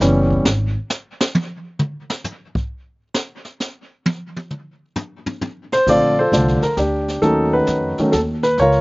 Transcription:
0.00 0.44 F#1 medium
0.00 0.46 E3 medium
0.00 0.46 G3 medium
0.00 0.46 B3 medium
0.00 0.46 C#4 medium
0.00 snare medium
0.00 hi-hat pedal medium
0.31 kick soft
0.45 0.75 G#1 medium
0.45 snare medium
0.90 snare loud
0.90 hi-hat pedal medium
1.21 snare loud
1.35 high tom medium
1.79 mid tom medium
2.10 snare loud
2.24 floor tom medium
2.24 hi-hat pedal medium
2.55 kick medium
3.14 snare medium
3.45 snare soft
3.60 snare medium
3.60 hi-hat pedal medium
4.06 high tom loud
4.36 high tom soft
4.51 mid tom soft
4.96 floor tom loud
4.96 hi-hat pedal medium
5.26 floor tom medium
5.41 floor tom loud
5.72 5.88 C5 loud
5.72 snare soft
5.86 6.30 A#1 medium
5.86 6.15 D3 soft
5.86 6.15 F3 soft
5.86 6.15 A3 soft
5.86 6.15 C4 medium
5.86 6.18 F4 medium
5.86 6.19 A4 medium
5.86 6.19 D5 loud
5.86 brush sweep soft
5.86 kick medium
5.86 snare soft
5.86 crash medium
6.19 6.75 F4 medium
6.19 6.75 A4 medium
6.19 6.60 C5 medium
6.32 6.60 C2 medium
6.32 6.60 D3 medium
6.32 6.60 F3 soft
6.32 6.60 A3 medium
6.32 6.60 D4 medium
6.32 snare medium
6.32 hi-hat pedal medium
6.48 snare soft
6.62 6.76 A#4 medium
6.62 muted upright bass stroke soft
6.62 snare soft
6.77 7.21 D2 medium
6.77 7.20 D4 medium
6.77 7.19 G4 medium
6.77 snare medium
6.77 hi-hat pedal medium
7.08 snare soft
7.22 7.66 D#2 medium
7.22 7.92 D#3 medium
7.22 7.92 F#3 medium
7.22 7.92 A3 soft
7.22 7.92 C#4 medium
7.22 7.53 D#4 medium
7.22 7.53 A4 medium
7.22 brush sweep soft
7.22 snare soft
7.53 8.10 D#4 soft
7.53 8.10 F#4 medium
7.53 7.95 B4 medium
7.67 7.96 F2 medium
7.67 snare medium
7.67 hi-hat pedal soft
7.98 8.12 D#3 medium
7.98 8.12 F#3 medium
7.98 8.12 A3 medium
7.98 8.12 C#4 medium
7.98 muted upright bass stroke soft
7.98 snare soft
8.12 8.57 D#2 medium
8.12 8.19 A4 medium
8.12 snare medium
8.12 hi-hat pedal medium
8.43 8.57 B4 medium
8.43 snare soft
8.58 8.81 C#2 medium
8.58 8.81 A#4 medium
8.58 8.81 C#5 loud
8.58 brush sweep soft
8.58 snare soft
8.62 8.81 F4 medium
8.72 snare soft

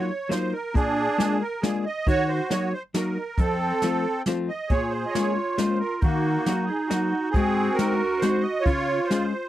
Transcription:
0.00 0.10 F4 medium
0.00 0.32 C#5 medium
0.29 0.52 F#3 medium
0.29 0.53 A#3 medium
0.29 0.53 D#4 medium
0.29 0.53 F4 medium
0.29 0.53 C5 medium
0.29 snare medium
0.29 closed hi-hat soft
0.53 0.75 A#4 medium
0.74 1.07 A#2 medium
0.74 1.37 D4 medium
0.74 1.43 G#4 loud
0.74 kick medium
0.74 closed hi-hat soft
1.18 1.41 G#3 medium
1.18 1.41 A#3 medium
1.18 1.41 D4 medium
1.18 1.41 F4 medium
1.18 snare medium
1.18 closed hi-hat soft
1.41 1.63 A#4 medium
1.62 1.85 G#3 medium
1.62 1.85 A#3 medium
1.62 1.85 D4 medium
1.62 1.85 F4 medium
1.62 1.85 G#4 medium
1.62 snare medium
1.62 closed hi-hat soft
1.85 2.07 D#5 medium
2.07 2.39 D#3 medium
2.07 2.69 F#4 medium
2.07 2.30 C#5 loud
2.07 kick medium
2.07 closed hi-hat medium
2.28 2.50 C5 medium
2.50 2.73 F#3 medium
2.50 2.72 A#3 medium
2.50 2.73 D#4 medium
2.50 2.73 F#4 medium
2.50 2.73 C#5 medium
2.50 snare medium
2.50 closed hi-hat soft
2.73 2.82 C5 medium
2.94 3.16 F#3 medium
2.94 3.16 A#3 medium
2.94 3.17 D#4 medium
2.94 3.17 F#4 medium
2.94 3.40 A#4 medium
2.94 snare medium
2.94 closed hi-hat medium
3.38 3.71 F2 medium
3.38 4.22 C4 medium
3.38 4.22 A4 medium
3.38 kick medium
3.38 closed hi-hat medium
3.82 4.05 F3 medium
3.82 4.05 A3 medium
3.82 4.05 C4 medium
3.82 4.05 F4 medium
3.82 snare medium
3.82 closed hi-hat medium
4.26 4.49 F3 medium
4.26 4.49 A3 medium
4.26 4.49 C4 medium
4.26 4.49 F4 medium
4.26 snare medium
4.26 closed hi-hat soft
4.48 4.71 D#5 medium
4.69 5.04 A#2 medium
4.69 6.03 F4 medium
4.69 5.33 G#4 medium
4.69 4.93 C#5 medium
4.69 kick medium
4.69 closed hi-hat soft
4.90 5.05 C5 medium
5.06 5.57 C#5 medium
5.06 5.14 D#5 medium
5.15 5.37 G#3 medium
5.15 5.37 A#3 medium
5.15 5.37 C#4 soft
5.15 5.37 F4 medium
5.15 snare medium
5.15 closed hi-hat soft
5.57 5.81 G#3 medium
5.57 5.81 A#3 medium
5.57 5.81 C#4 medium
5.57 5.81 F4 medium
5.57 5.78 C5 medium
5.57 snare medium
5.57 closed hi-hat medium
5.80 6.03 A#4 medium
6.01 6.36 D#3 medium
6.01 6.65 A#3 medium
6.01 7.37 D#4 medium
6.01 6.65 F#4 medium
6.01 kick medium
6.01 closed hi-hat soft
6.46 6.69 F#3 medium
6.46 6.69 A#3 medium
6.46 6.69 D#4 medium
6.46 6.69 F#4 medium
6.46 snare medium
6.46 closed hi-hat soft
6.65 6.89 G#4 medium
6.87 7.12 F#3 medium
6.87 7.12 A#3 medium
6.87 7.13 D#4 medium
6.87 7.29 F#4 medium
6.91 7.13 F#4 medium
6.91 snare medium
6.91 closed hi-hat soft
7.31 7.95 C4 medium
7.31 7.77 G#4 loud
7.31 kick medium
7.31 closed hi-hat soft
7.35 7.68 G#2 medium
7.35 8.64 F#4 loud
7.74 8.21 A#4 medium
7.79 8.00 G#3 medium
7.79 8.01 C4 medium
7.79 8.01 D#4 medium
7.79 8.01 F#4 medium
7.79 snare medium
7.79 closed hi-hat soft
8.18 8.43 C5 medium
8.18 snare medium
8.18 closed hi-hat medium
8.23 8.44 G#3 medium
8.23 8.45 C4 soft
8.23 8.44 D#4 soft
8.23 8.45 F#4 medium
8.41 8.64 D#5 medium
8.60 9.26 F4 medium
8.60 9.08 C#5 loud
8.65 8.99 C#3 medium
8.65 9.49 F4 medium
8.65 kick medium
8.65 closed hi-hat soft
9.04 9.47 C5 medium
9.10 9.32 G#3 medium
9.10 9.32 C#4 soft
9.10 9.32 F4 medium
9.10 9.32 G#4 medium
9.10 snare medium
9.10 closed hi-hat soft

